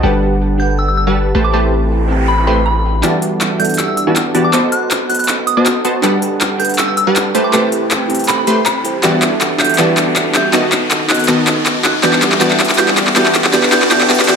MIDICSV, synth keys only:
0, 0, Header, 1, 2, 480
1, 0, Start_track
1, 0, Key_signature, 1, "minor"
1, 0, Tempo, 375000
1, 44, Time_signature, 4, 2, 24, 8
1, 18381, End_track
2, 0, Start_track
2, 0, Title_t, "Synth keys"
2, 0, Program_c, 0, 88
2, 0, Control_c, 0, 64, 127
2, 19, Note_on_c, 0, 62, 74
2, 31, Note_on_c, 0, 67, 69
2, 43, Note_on_c, 0, 69, 68
2, 56, Note_on_c, 0, 71, 68
2, 58, Control_c, 0, 64, 0
2, 69, Note_on_c, 0, 78, 84
2, 287, Control_c, 0, 64, 127
2, 721, Note_off_c, 0, 62, 0
2, 730, Note_off_c, 0, 67, 0
2, 736, Note_off_c, 0, 69, 0
2, 736, Note_on_c, 0, 62, 73
2, 743, Note_off_c, 0, 71, 0
2, 749, Note_off_c, 0, 78, 0
2, 749, Note_on_c, 0, 67, 67
2, 762, Note_on_c, 0, 69, 68
2, 775, Note_on_c, 0, 71, 66
2, 788, Note_on_c, 0, 78, 82
2, 1696, Note_off_c, 0, 62, 0
2, 1703, Note_off_c, 0, 67, 0
2, 1709, Note_off_c, 0, 69, 0
2, 1716, Note_off_c, 0, 71, 0
2, 1722, Note_off_c, 0, 78, 0
2, 1740, Control_c, 0, 64, 0
2, 1937, Note_on_c, 0, 64, 75
2, 1950, Control_c, 0, 64, 127
2, 1950, Note_on_c, 0, 67, 70
2, 1962, Note_on_c, 0, 69, 69
2, 1976, Note_on_c, 0, 60, 67
2, 1989, Note_on_c, 0, 79, 83
2, 2643, Note_off_c, 0, 64, 0
2, 2649, Note_off_c, 0, 67, 0
2, 2656, Note_off_c, 0, 69, 0
2, 2659, Note_on_c, 0, 64, 72
2, 2663, Note_off_c, 0, 60, 0
2, 2669, Note_off_c, 0, 79, 0
2, 2671, Note_on_c, 0, 67, 66
2, 2685, Note_on_c, 0, 69, 69
2, 2697, Note_on_c, 0, 60, 68
2, 2710, Note_on_c, 0, 79, 80
2, 3844, Note_off_c, 0, 64, 0
2, 3850, Note_off_c, 0, 67, 0
2, 3857, Note_off_c, 0, 69, 0
2, 3858, Note_on_c, 0, 62, 73
2, 3863, Note_off_c, 0, 60, 0
2, 3869, Note_off_c, 0, 79, 0
2, 3871, Note_on_c, 0, 78, 68
2, 3883, Note_on_c, 0, 55, 67
2, 3896, Note_on_c, 0, 69, 69
2, 3897, Control_c, 0, 64, 0
2, 3910, Note_on_c, 0, 76, 82
2, 4159, Control_c, 0, 64, 127
2, 4563, Note_off_c, 0, 62, 0
2, 4570, Note_off_c, 0, 78, 0
2, 4576, Note_off_c, 0, 55, 0
2, 4577, Note_on_c, 0, 62, 74
2, 4583, Note_off_c, 0, 69, 0
2, 4589, Note_off_c, 0, 76, 0
2, 4591, Note_on_c, 0, 78, 67
2, 4604, Note_on_c, 0, 55, 69
2, 4617, Note_on_c, 0, 69, 68
2, 4630, Note_on_c, 0, 76, 83
2, 5763, Note_off_c, 0, 62, 0
2, 5770, Note_off_c, 0, 78, 0
2, 5777, Note_off_c, 0, 55, 0
2, 5783, Note_off_c, 0, 69, 0
2, 5789, Note_off_c, 0, 76, 0
2, 5790, Note_on_c, 0, 66, 69
2, 5804, Note_on_c, 0, 69, 69
2, 5816, Note_on_c, 0, 83, 67
2, 5822, Control_c, 0, 64, 0
2, 5829, Note_on_c, 0, 75, 84
2, 6019, Control_c, 0, 64, 127
2, 6490, Note_off_c, 0, 66, 0
2, 6496, Note_off_c, 0, 69, 0
2, 6503, Note_off_c, 0, 83, 0
2, 6509, Note_off_c, 0, 75, 0
2, 6512, Note_on_c, 0, 66, 68
2, 6524, Note_on_c, 0, 69, 68
2, 6538, Note_on_c, 0, 83, 66
2, 6551, Note_on_c, 0, 75, 81
2, 7690, Note_off_c, 0, 66, 0
2, 7697, Note_off_c, 0, 69, 0
2, 7699, Note_on_c, 0, 62, 76
2, 7704, Note_off_c, 0, 83, 0
2, 7710, Note_off_c, 0, 75, 0
2, 7711, Note_on_c, 0, 67, 71
2, 7724, Note_on_c, 0, 69, 69
2, 7737, Note_on_c, 0, 71, 68
2, 7741, Control_c, 0, 64, 0
2, 7750, Note_on_c, 0, 78, 84
2, 7974, Control_c, 0, 64, 127
2, 8400, Note_off_c, 0, 62, 0
2, 8410, Note_off_c, 0, 67, 0
2, 8415, Note_on_c, 0, 62, 74
2, 8416, Note_off_c, 0, 69, 0
2, 8423, Note_off_c, 0, 71, 0
2, 8429, Note_off_c, 0, 78, 0
2, 8429, Note_on_c, 0, 67, 70
2, 8441, Note_on_c, 0, 69, 70
2, 8454, Note_on_c, 0, 71, 68
2, 8467, Note_on_c, 0, 78, 83
2, 9376, Note_off_c, 0, 62, 0
2, 9383, Note_off_c, 0, 67, 0
2, 9389, Note_off_c, 0, 69, 0
2, 9395, Note_off_c, 0, 71, 0
2, 9402, Note_off_c, 0, 78, 0
2, 9423, Control_c, 0, 64, 0
2, 9618, Note_on_c, 0, 64, 75
2, 9630, Note_on_c, 0, 67, 72
2, 9643, Note_on_c, 0, 69, 71
2, 9656, Note_on_c, 0, 60, 69
2, 9662, Control_c, 0, 64, 127
2, 9669, Note_on_c, 0, 79, 85
2, 10320, Note_off_c, 0, 64, 0
2, 10329, Note_off_c, 0, 67, 0
2, 10336, Note_off_c, 0, 69, 0
2, 10336, Note_on_c, 0, 64, 74
2, 10342, Note_off_c, 0, 60, 0
2, 10349, Note_off_c, 0, 79, 0
2, 10349, Note_on_c, 0, 67, 68
2, 10361, Note_on_c, 0, 69, 68
2, 10374, Note_on_c, 0, 60, 66
2, 10386, Note_on_c, 0, 79, 83
2, 11287, Note_off_c, 0, 64, 0
2, 11294, Note_off_c, 0, 67, 0
2, 11300, Note_off_c, 0, 69, 0
2, 11306, Note_off_c, 0, 60, 0
2, 11309, Note_on_c, 0, 64, 85
2, 11312, Note_off_c, 0, 79, 0
2, 11316, Note_on_c, 0, 67, 77
2, 11322, Note_on_c, 0, 69, 75
2, 11328, Note_on_c, 0, 72, 80
2, 11335, Note_on_c, 0, 79, 92
2, 11422, Note_off_c, 0, 64, 0
2, 11425, Note_off_c, 0, 67, 0
2, 11428, Note_off_c, 0, 69, 0
2, 11432, Note_off_c, 0, 72, 0
2, 11435, Note_off_c, 0, 79, 0
2, 11537, Note_on_c, 0, 62, 70
2, 11550, Note_on_c, 0, 78, 65
2, 11562, Note_on_c, 0, 55, 67
2, 11575, Note_on_c, 0, 69, 64
2, 11577, Control_c, 0, 64, 0
2, 11588, Note_on_c, 0, 76, 79
2, 11842, Control_c, 0, 64, 127
2, 12243, Note_off_c, 0, 62, 0
2, 12249, Note_off_c, 0, 78, 0
2, 12256, Note_off_c, 0, 55, 0
2, 12256, Note_on_c, 0, 62, 69
2, 12262, Note_off_c, 0, 69, 0
2, 12268, Note_off_c, 0, 76, 0
2, 12269, Note_on_c, 0, 66, 63
2, 12282, Note_on_c, 0, 67, 64
2, 12295, Note_on_c, 0, 69, 64
2, 12307, Note_on_c, 0, 76, 76
2, 12482, Note_off_c, 0, 62, 0
2, 12497, Note_on_c, 0, 62, 73
2, 12498, Note_off_c, 0, 66, 0
2, 12505, Note_off_c, 0, 67, 0
2, 12510, Note_on_c, 0, 78, 68
2, 12511, Note_off_c, 0, 69, 0
2, 12517, Note_off_c, 0, 76, 0
2, 12523, Note_on_c, 0, 55, 65
2, 12535, Note_on_c, 0, 69, 66
2, 12548, Note_on_c, 0, 76, 78
2, 13203, Note_off_c, 0, 62, 0
2, 13209, Note_off_c, 0, 78, 0
2, 13216, Note_off_c, 0, 55, 0
2, 13217, Note_on_c, 0, 62, 69
2, 13222, Note_off_c, 0, 69, 0
2, 13228, Note_off_c, 0, 76, 0
2, 13230, Note_on_c, 0, 66, 65
2, 13243, Note_on_c, 0, 67, 65
2, 13256, Note_on_c, 0, 69, 67
2, 13268, Note_on_c, 0, 76, 79
2, 13452, Note_off_c, 0, 62, 0
2, 13458, Note_on_c, 0, 63, 72
2, 13459, Note_off_c, 0, 66, 0
2, 13465, Note_off_c, 0, 67, 0
2, 13471, Note_on_c, 0, 66, 66
2, 13472, Note_off_c, 0, 69, 0
2, 13478, Note_off_c, 0, 76, 0
2, 13497, Note_on_c, 0, 69, 68
2, 13499, Control_c, 0, 64, 0
2, 13510, Note_on_c, 0, 75, 81
2, 13726, Control_c, 0, 64, 127
2, 14163, Note_off_c, 0, 63, 0
2, 14170, Note_off_c, 0, 66, 0
2, 14179, Note_on_c, 0, 63, 71
2, 14183, Note_off_c, 0, 69, 0
2, 14189, Note_off_c, 0, 75, 0
2, 14192, Note_on_c, 0, 66, 68
2, 14217, Note_on_c, 0, 69, 67
2, 14230, Note_on_c, 0, 75, 81
2, 14402, Note_off_c, 0, 63, 0
2, 14414, Note_off_c, 0, 66, 0
2, 14418, Note_on_c, 0, 63, 75
2, 14430, Note_on_c, 0, 66, 69
2, 14432, Note_off_c, 0, 69, 0
2, 14439, Note_off_c, 0, 75, 0
2, 14456, Note_on_c, 0, 69, 68
2, 14468, Note_on_c, 0, 75, 83
2, 15123, Note_off_c, 0, 63, 0
2, 15129, Note_off_c, 0, 66, 0
2, 15138, Note_on_c, 0, 63, 76
2, 15142, Note_off_c, 0, 69, 0
2, 15149, Note_off_c, 0, 75, 0
2, 15150, Note_on_c, 0, 66, 66
2, 15175, Note_on_c, 0, 69, 66
2, 15188, Note_on_c, 0, 75, 81
2, 15372, Note_off_c, 0, 63, 0
2, 15377, Note_on_c, 0, 62, 76
2, 15378, Note_off_c, 0, 66, 0
2, 15390, Note_on_c, 0, 78, 70
2, 15391, Note_off_c, 0, 69, 0
2, 15398, Note_off_c, 0, 75, 0
2, 15402, Note_on_c, 0, 55, 70
2, 15415, Note_on_c, 0, 69, 70
2, 15422, Control_c, 0, 64, 0
2, 15428, Note_on_c, 0, 76, 83
2, 15618, Control_c, 0, 64, 127
2, 15842, Note_off_c, 0, 62, 0
2, 15855, Note_off_c, 0, 78, 0
2, 15857, Note_on_c, 0, 62, 78
2, 15865, Note_off_c, 0, 55, 0
2, 15870, Note_on_c, 0, 78, 73
2, 15871, Note_off_c, 0, 69, 0
2, 15878, Note_off_c, 0, 76, 0
2, 15883, Note_on_c, 0, 55, 71
2, 15895, Note_on_c, 0, 69, 73
2, 15909, Note_on_c, 0, 76, 89
2, 16323, Note_off_c, 0, 62, 0
2, 16336, Note_off_c, 0, 78, 0
2, 16339, Note_on_c, 0, 62, 79
2, 16345, Note_off_c, 0, 55, 0
2, 16351, Note_off_c, 0, 69, 0
2, 16351, Note_on_c, 0, 78, 70
2, 16358, Note_off_c, 0, 76, 0
2, 16364, Note_on_c, 0, 55, 70
2, 16377, Note_on_c, 0, 69, 71
2, 16390, Note_on_c, 0, 76, 85
2, 16803, Note_off_c, 0, 62, 0
2, 16817, Note_off_c, 0, 78, 0
2, 16819, Note_on_c, 0, 62, 77
2, 16826, Note_off_c, 0, 55, 0
2, 16832, Note_off_c, 0, 69, 0
2, 16832, Note_on_c, 0, 78, 74
2, 16839, Note_off_c, 0, 76, 0
2, 16844, Note_on_c, 0, 55, 74
2, 16857, Note_on_c, 0, 69, 73
2, 16870, Note_on_c, 0, 76, 88
2, 17100, Control_c, 0, 64, 0
2, 17284, Note_off_c, 0, 62, 0
2, 17300, Note_off_c, 0, 78, 0
2, 17300, Note_on_c, 0, 62, 80
2, 17306, Note_off_c, 0, 55, 0
2, 17312, Note_off_c, 0, 69, 0
2, 17313, Note_on_c, 0, 66, 74
2, 17317, Control_c, 0, 64, 127
2, 17319, Note_off_c, 0, 76, 0
2, 17326, Note_on_c, 0, 67, 72
2, 17339, Note_on_c, 0, 69, 74
2, 17351, Note_on_c, 0, 76, 86
2, 17523, Note_off_c, 0, 62, 0
2, 17535, Note_off_c, 0, 66, 0
2, 17538, Note_on_c, 0, 62, 81
2, 17546, Note_off_c, 0, 67, 0
2, 17550, Note_on_c, 0, 66, 72
2, 17553, Note_off_c, 0, 69, 0
2, 17559, Note_off_c, 0, 76, 0
2, 17564, Note_on_c, 0, 67, 73
2, 17577, Note_on_c, 0, 69, 73
2, 17589, Note_on_c, 0, 76, 88
2, 17763, Note_off_c, 0, 62, 0
2, 17775, Note_off_c, 0, 66, 0
2, 17778, Note_on_c, 0, 62, 84
2, 17786, Note_off_c, 0, 67, 0
2, 17791, Note_on_c, 0, 66, 73
2, 17792, Note_off_c, 0, 69, 0
2, 17798, Note_off_c, 0, 76, 0
2, 17804, Note_on_c, 0, 67, 74
2, 17816, Note_on_c, 0, 69, 74
2, 17829, Note_on_c, 0, 76, 89
2, 18002, Note_off_c, 0, 62, 0
2, 18016, Note_off_c, 0, 66, 0
2, 18018, Note_on_c, 0, 62, 80
2, 18026, Note_off_c, 0, 67, 0
2, 18031, Note_on_c, 0, 66, 74
2, 18032, Note_off_c, 0, 69, 0
2, 18038, Note_off_c, 0, 76, 0
2, 18044, Note_on_c, 0, 67, 74
2, 18057, Note_on_c, 0, 69, 73
2, 18070, Note_on_c, 0, 76, 88
2, 18243, Note_off_c, 0, 62, 0
2, 18256, Note_off_c, 0, 66, 0
2, 18258, Note_on_c, 0, 62, 81
2, 18266, Note_off_c, 0, 67, 0
2, 18271, Note_on_c, 0, 66, 73
2, 18272, Note_off_c, 0, 69, 0
2, 18279, Note_off_c, 0, 76, 0
2, 18284, Note_on_c, 0, 67, 75
2, 18296, Note_on_c, 0, 69, 74
2, 18310, Note_on_c, 0, 76, 86
2, 18381, Note_off_c, 0, 62, 0
2, 18381, Note_off_c, 0, 66, 0
2, 18381, Note_off_c, 0, 67, 0
2, 18381, Note_off_c, 0, 69, 0
2, 18381, Note_off_c, 0, 76, 0
2, 18381, End_track
0, 0, End_of_file